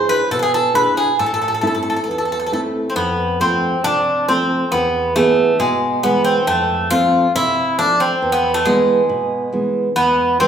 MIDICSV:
0, 0, Header, 1, 3, 480
1, 0, Start_track
1, 0, Tempo, 441501
1, 1297, Time_signature, 4, 2, 24, 8
1, 5611, Tempo, 436681
1, 11453, End_track
2, 0, Start_track
2, 0, Title_t, "Bouzouki"
2, 0, Program_c, 0, 25
2, 101, Note_on_c, 0, 71, 89
2, 321, Note_off_c, 0, 71, 0
2, 340, Note_on_c, 0, 69, 87
2, 413, Note_off_c, 0, 69, 0
2, 426, Note_on_c, 0, 69, 55
2, 455, Note_off_c, 0, 69, 0
2, 463, Note_on_c, 0, 68, 72
2, 571, Note_off_c, 0, 68, 0
2, 590, Note_on_c, 0, 69, 84
2, 814, Note_off_c, 0, 69, 0
2, 818, Note_on_c, 0, 71, 91
2, 1041, Note_off_c, 0, 71, 0
2, 1057, Note_on_c, 0, 68, 77
2, 1281, Note_off_c, 0, 68, 0
2, 1299, Note_on_c, 0, 69, 76
2, 1361, Note_off_c, 0, 69, 0
2, 1374, Note_on_c, 0, 69, 59
2, 1442, Note_off_c, 0, 69, 0
2, 1455, Note_on_c, 0, 69, 64
2, 1525, Note_off_c, 0, 69, 0
2, 1540, Note_on_c, 0, 69, 52
2, 1596, Note_off_c, 0, 69, 0
2, 1609, Note_on_c, 0, 69, 56
2, 1667, Note_off_c, 0, 69, 0
2, 1680, Note_on_c, 0, 69, 53
2, 1741, Note_off_c, 0, 69, 0
2, 1755, Note_on_c, 0, 69, 56
2, 1804, Note_off_c, 0, 69, 0
2, 1817, Note_on_c, 0, 69, 44
2, 1886, Note_off_c, 0, 69, 0
2, 1899, Note_on_c, 0, 69, 53
2, 1972, Note_off_c, 0, 69, 0
2, 1985, Note_on_c, 0, 69, 47
2, 2050, Note_off_c, 0, 69, 0
2, 2063, Note_on_c, 0, 69, 53
2, 2123, Note_off_c, 0, 69, 0
2, 2136, Note_on_c, 0, 69, 44
2, 2202, Note_off_c, 0, 69, 0
2, 2215, Note_on_c, 0, 69, 52
2, 2280, Note_off_c, 0, 69, 0
2, 2293, Note_on_c, 0, 69, 43
2, 2361, Note_off_c, 0, 69, 0
2, 2374, Note_on_c, 0, 69, 53
2, 2437, Note_off_c, 0, 69, 0
2, 2450, Note_on_c, 0, 69, 39
2, 2510, Note_off_c, 0, 69, 0
2, 2523, Note_on_c, 0, 69, 61
2, 2591, Note_off_c, 0, 69, 0
2, 2604, Note_on_c, 0, 69, 51
2, 2667, Note_off_c, 0, 69, 0
2, 2680, Note_on_c, 0, 69, 58
2, 2741, Note_off_c, 0, 69, 0
2, 2755, Note_on_c, 0, 69, 54
2, 2828, Note_off_c, 0, 69, 0
2, 3148, Note_on_c, 0, 60, 51
2, 3214, Note_off_c, 0, 60, 0
2, 3218, Note_on_c, 0, 59, 83
2, 3702, Note_off_c, 0, 59, 0
2, 3707, Note_on_c, 0, 60, 77
2, 4148, Note_off_c, 0, 60, 0
2, 4178, Note_on_c, 0, 62, 93
2, 4655, Note_off_c, 0, 62, 0
2, 4659, Note_on_c, 0, 60, 82
2, 5124, Note_off_c, 0, 60, 0
2, 5129, Note_on_c, 0, 59, 83
2, 5574, Note_off_c, 0, 59, 0
2, 5607, Note_on_c, 0, 57, 84
2, 6057, Note_off_c, 0, 57, 0
2, 6090, Note_on_c, 0, 56, 79
2, 6571, Note_on_c, 0, 59, 90
2, 6587, Note_off_c, 0, 56, 0
2, 6798, Note_off_c, 0, 59, 0
2, 6803, Note_on_c, 0, 60, 85
2, 7050, Note_off_c, 0, 60, 0
2, 7054, Note_on_c, 0, 57, 93
2, 7502, Note_off_c, 0, 57, 0
2, 7528, Note_on_c, 0, 65, 108
2, 7979, Note_off_c, 0, 65, 0
2, 8024, Note_on_c, 0, 64, 101
2, 8493, Note_off_c, 0, 64, 0
2, 8497, Note_on_c, 0, 62, 94
2, 8720, Note_off_c, 0, 62, 0
2, 8734, Note_on_c, 0, 60, 80
2, 9070, Note_off_c, 0, 60, 0
2, 9086, Note_on_c, 0, 59, 89
2, 9324, Note_off_c, 0, 59, 0
2, 9329, Note_on_c, 0, 57, 90
2, 9444, Note_off_c, 0, 57, 0
2, 9450, Note_on_c, 0, 56, 76
2, 10367, Note_off_c, 0, 56, 0
2, 10885, Note_on_c, 0, 59, 92
2, 11333, Note_off_c, 0, 59, 0
2, 11370, Note_on_c, 0, 60, 89
2, 11453, Note_off_c, 0, 60, 0
2, 11453, End_track
3, 0, Start_track
3, 0, Title_t, "Nylon-string guitar"
3, 0, Program_c, 1, 24
3, 0, Note_on_c, 1, 62, 52
3, 0, Note_on_c, 1, 64, 49
3, 0, Note_on_c, 1, 68, 63
3, 240, Note_off_c, 1, 62, 0
3, 242, Note_off_c, 1, 64, 0
3, 244, Note_off_c, 1, 68, 0
3, 336, Note_on_c, 1, 47, 63
3, 802, Note_off_c, 1, 47, 0
3, 805, Note_on_c, 1, 62, 48
3, 814, Note_on_c, 1, 64, 45
3, 819, Note_on_c, 1, 68, 50
3, 1196, Note_off_c, 1, 62, 0
3, 1198, Note_off_c, 1, 64, 0
3, 1203, Note_off_c, 1, 68, 0
3, 1297, Note_on_c, 1, 45, 59
3, 1764, Note_off_c, 1, 45, 0
3, 1765, Note_on_c, 1, 57, 55
3, 1770, Note_on_c, 1, 60, 44
3, 1775, Note_on_c, 1, 64, 63
3, 2155, Note_off_c, 1, 57, 0
3, 2158, Note_off_c, 1, 60, 0
3, 2161, Note_off_c, 1, 64, 0
3, 2257, Note_on_c, 1, 40, 53
3, 2724, Note_off_c, 1, 40, 0
3, 2741, Note_on_c, 1, 57, 49
3, 2746, Note_on_c, 1, 60, 43
3, 2749, Note_on_c, 1, 64, 51
3, 3125, Note_off_c, 1, 57, 0
3, 3125, Note_off_c, 1, 60, 0
3, 3129, Note_off_c, 1, 64, 0
3, 3214, Note_on_c, 1, 41, 70
3, 3681, Note_off_c, 1, 41, 0
3, 3695, Note_on_c, 1, 53, 57
3, 3701, Note_on_c, 1, 57, 52
3, 3704, Note_on_c, 1, 60, 62
3, 4080, Note_off_c, 1, 53, 0
3, 4082, Note_off_c, 1, 57, 0
3, 4084, Note_off_c, 1, 60, 0
3, 4174, Note_on_c, 1, 48, 68
3, 4639, Note_off_c, 1, 48, 0
3, 4659, Note_on_c, 1, 53, 49
3, 4661, Note_on_c, 1, 57, 46
3, 4665, Note_on_c, 1, 60, 51
3, 5039, Note_off_c, 1, 57, 0
3, 5040, Note_off_c, 1, 53, 0
3, 5043, Note_off_c, 1, 60, 0
3, 5135, Note_on_c, 1, 40, 63
3, 5597, Note_off_c, 1, 40, 0
3, 5608, Note_on_c, 1, 52, 52
3, 5614, Note_on_c, 1, 68, 52
3, 5619, Note_on_c, 1, 59, 61
3, 5994, Note_off_c, 1, 52, 0
3, 5998, Note_off_c, 1, 68, 0
3, 6001, Note_off_c, 1, 59, 0
3, 6084, Note_on_c, 1, 47, 62
3, 6555, Note_off_c, 1, 47, 0
3, 6568, Note_on_c, 1, 52, 52
3, 6574, Note_on_c, 1, 56, 47
3, 6579, Note_on_c, 1, 59, 52
3, 6955, Note_off_c, 1, 52, 0
3, 6959, Note_off_c, 1, 56, 0
3, 6959, Note_off_c, 1, 59, 0
3, 7047, Note_on_c, 1, 41, 60
3, 7517, Note_off_c, 1, 41, 0
3, 7535, Note_on_c, 1, 57, 49
3, 7536, Note_on_c, 1, 53, 60
3, 7541, Note_on_c, 1, 60, 61
3, 7919, Note_off_c, 1, 57, 0
3, 7920, Note_off_c, 1, 53, 0
3, 7924, Note_off_c, 1, 60, 0
3, 8022, Note_on_c, 1, 48, 65
3, 8485, Note_off_c, 1, 48, 0
3, 8500, Note_on_c, 1, 53, 49
3, 8505, Note_on_c, 1, 57, 45
3, 8508, Note_on_c, 1, 60, 55
3, 8882, Note_off_c, 1, 53, 0
3, 8886, Note_off_c, 1, 57, 0
3, 8886, Note_off_c, 1, 60, 0
3, 8976, Note_on_c, 1, 40, 59
3, 9442, Note_off_c, 1, 40, 0
3, 9456, Note_on_c, 1, 52, 49
3, 9458, Note_on_c, 1, 56, 51
3, 9464, Note_on_c, 1, 59, 60
3, 9839, Note_off_c, 1, 52, 0
3, 9840, Note_off_c, 1, 56, 0
3, 9844, Note_off_c, 1, 59, 0
3, 9933, Note_on_c, 1, 47, 65
3, 10399, Note_off_c, 1, 47, 0
3, 10408, Note_on_c, 1, 52, 50
3, 10413, Note_on_c, 1, 56, 41
3, 10418, Note_on_c, 1, 59, 52
3, 10793, Note_off_c, 1, 52, 0
3, 10795, Note_off_c, 1, 56, 0
3, 10799, Note_off_c, 1, 59, 0
3, 10893, Note_on_c, 1, 40, 63
3, 11356, Note_off_c, 1, 40, 0
3, 11377, Note_on_c, 1, 52, 54
3, 11382, Note_on_c, 1, 56, 51
3, 11387, Note_on_c, 1, 71, 59
3, 11453, Note_off_c, 1, 52, 0
3, 11453, Note_off_c, 1, 56, 0
3, 11453, Note_off_c, 1, 71, 0
3, 11453, End_track
0, 0, End_of_file